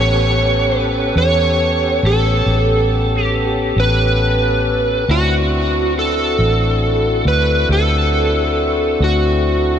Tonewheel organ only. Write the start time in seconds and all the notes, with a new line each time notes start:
Already playing: B3 C#4 G4 A4
5.10 C4 D4 E4 F#4